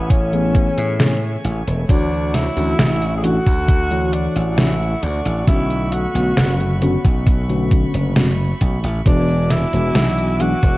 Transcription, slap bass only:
0.00 0.68 A1 medium
0.78 1.35 A2 medium
1.45 1.61 A1 medium
1.67 1.84 E1 medium
1.89 2.47 D2 medium
2.57 2.73 D2 medium
2.79 3.37 A1 medium
3.46 4.26 D2 medium
4.36 4.94 A1 medium
5.03 5.20 D2 medium
5.25 5.42 A1 loud
5.47 6.06 B1 loud
6.15 6.31 B1 medium
6.37 6.95 F#1 medium
7.04 7.85 B1 medium
7.94 8.52 F#1 medium
8.61 8.78 B1 loud
8.84 9.00 A1 medium
9.06 9.64 E1 medium
9.73 9.90 E1 medium
9.95 10.53 B1 medium
10.63 10.78 E1 medium

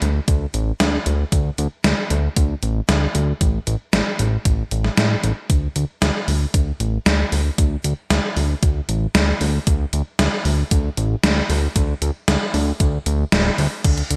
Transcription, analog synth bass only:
0.02 0.20 D2 medium
0.28 0.46 D2 medium
0.54 0.72 A1 medium
0.80 0.98 D2 medium
1.06 1.24 D2 medium
1.32 1.51 D2 medium
1.58 1.68 D2 loud
1.84 1.94 D2 medium
2.10 2.29 D2 medium
2.37 2.55 D2 medium
2.63 2.81 A1 medium
2.89 3.07 D2 medium
3.15 3.33 D2 medium
3.41 3.59 A1 loud
3.67 3.76 A1 medium
3.93 4.02 A1 medium
4.19 4.38 A1 medium
4.45 4.64 A1 medium
4.72 4.90 A1 medium
4.98 5.16 A2 loud
5.24 5.33 A1 medium
5.50 5.68 D2 loud
5.76 5.85 D2 medium
6.02 6.11 D2 medium
6.28 6.46 D2 medium
6.54 6.72 D2 medium
6.80 6.98 A1 medium
7.06 7.24 D2 medium
7.32 7.51 D2 medium
7.58 7.77 D2 loud
7.84 7.94 D2 medium
8.11 8.20 D2 medium
8.37 8.55 D2 medium
8.63 8.81 D2 medium
8.89 9.07 A1 medium
9.15 9.33 D2 medium
9.41 9.59 D2 medium
9.67 9.85 D2 medium
9.93 10.02 D2 medium
10.19 10.28 D2 medium
10.45 10.64 D2 medium
10.71 10.90 D2 medium
10.97 11.16 A1 medium
11.24 11.42 D2 medium
11.50 11.68 D2 medium
11.76 11.94 D2 loud
12.02 12.11 D2 medium
12.28 12.37 D2 medium
12.54 12.72 D2 medium
12.80 12.98 D2 medium
13.06 13.24 D2 medium
13.32 13.50 D1 medium
13.58 13.67 D2 medium
13.85 14.03 D2 loud
14.11 14.16 D2 loud

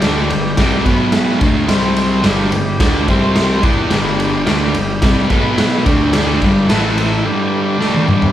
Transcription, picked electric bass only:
0.02 0.28 D2 medium
0.30 0.56 G1 medium
0.58 0.84 C2 loud
0.85 1.37 B1 medium
1.41 1.67 D2 medium
1.69 2.21 C2 medium
2.24 2.50 G1 medium
2.52 2.78 G1 medium
2.80 3.06 D2 loud
3.08 3.60 C2 medium
3.63 3.89 E2 medium
3.92 4.43 G1 medium
4.47 4.73 D2 medium
4.74 5.00 G1 medium
5.02 5.28 C2 loud
5.30 5.82 B1 medium
5.86 6.12 D2 medium
6.13 6.39 D2 medium
6.41 6.67 G1 medium
6.68 7.20 A1 loud

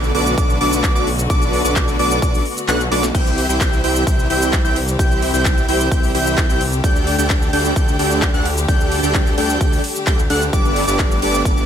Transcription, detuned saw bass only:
0.00 0.12 B1 loud
0.15 0.35 B1 loud
0.38 0.58 B1 loud
0.61 0.93 B1 medium
0.95 1.28 B1 loud
1.30 1.62 B1 loud
1.65 1.97 B1 loud
1.99 2.20 B1 loud
2.22 2.40 B1 loud
2.68 2.89 B1 medium
2.92 3.12 B1 loud
3.15 3.47 C2 loud
3.49 3.81 C2 loud
3.84 4.05 C2 loud
4.07 4.28 C2 loud
4.30 4.62 C2 medium
4.65 4.97 C2 loud
4.99 5.32 C2 loud
5.34 5.66 C2 loud
5.68 5.89 C2 loud
5.91 6.12 C2 loud
6.15 6.47 C2 loud
6.49 6.82 C2 loud
6.84 7.16 D2 loud
7.18 7.51 D2 loud
7.53 7.74 D2 loud
7.76 7.97 D2 loud
7.99 8.32 D2 loud
8.34 8.66 D2 loud
8.68 9.01 D2 loud
9.03 9.35 D2 loud
9.38 9.58 D2 loud
9.61 9.79 D2 loud
10.07 10.28 D2 loud
10.30 10.51 D2 loud
10.53 10.85 G1 loud
10.88 11.20 G1 loud
11.22 11.43 G1 loud
11.45 11.66 G1 loud

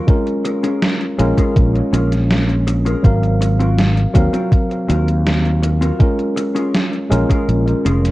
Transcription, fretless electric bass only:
1.20 1.31 A#1 medium
1.56 1.80 A#1 medium
1.93 2.94 A#1 loud
3.04 4.05 G#1 loud
4.15 4.27 D#2 loud
4.90 5.90 D#2 loud
7.11 7.24 A#1 medium
7.49 7.73 A#1 medium
7.85 8.11 F1 medium

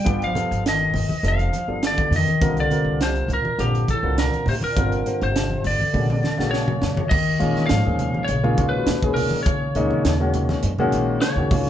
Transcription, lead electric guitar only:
0.00 0.23 G5 medium
0.24 0.63 F5 loud
0.69 1.27 D#5 medium
1.28 1.86 F5 medium
1.87 2.15 D5 medium
2.16 2.56 D#5 medium
2.60 2.99 D5 medium
3.03 3.32 C5 medium
3.33 3.62 A#4 medium
3.60 3.90 G4 medium
3.90 4.19 A4 medium
4.19 4.48 A#4 medium
4.49 4.54 C5 medium
4.64 5.23 A#4 medium
5.23 5.67 C5 medium
5.67 6.79 D5 medium
6.51 7.12 C#5 medium
7.09 7.66 D#5 medium
7.66 8.23 F5 medium
8.24 8.68 C#5 medium
8.69 9.13 B4 medium
9.14 9.42 A#4 medium
9.43 10.58 C#5 medium
11.22 11.70 C#5 medium

